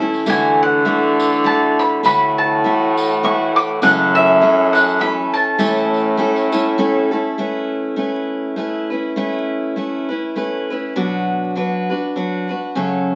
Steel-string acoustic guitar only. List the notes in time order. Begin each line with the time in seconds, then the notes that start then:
Already playing: E3
0.00 A3 C#4 E4 A4
0.26 D3 E3 A3 E4 F#4
0.85 E3 A3 E4 F#4
1.44 E3 A3 E4 F#4
2.03 D3 E3 A3 E4 F#4
2.64 E3 A3 E4 F#4
3.23 E3 A3 E4 F#4
3.82 F#2 C#3 E3 A3 C#4 A4
4.41 E3 A3 C#4 A4
5.00 E3 A3 C#4 A4
5.58 A2 E3 A3 C#4 E4 A4
6.17 A3 C#4 E4 A4
6.52 A3 C#4 E4 A4
6.78 A3 C#4 E4 A4
7.11 A3 C#4 E4 A4
7.38 A3 C#4 E4 B4
7.96 A3 C#4 E4 B4
8.56 A3 C#4 E4 B4
8.90 C#4 E4 B4
9.16 A3 C#4 E4 B4
9.76 A3 C#4 E4 B4
10.09 C#4 E4 B4
10.36 A3 C#4 E4 B4
10.70 C#4 E4 B4
10.96 B2 F#3 D4 F#4 B4
11.56 F#3 D4 F#4 B4
11.90 D4 F#4 B4
12.16 F#3 D4 F#4 B4
12.49 D4 F#4 B4
12.75 F#2 C#3 F#3 A3 C#4 A4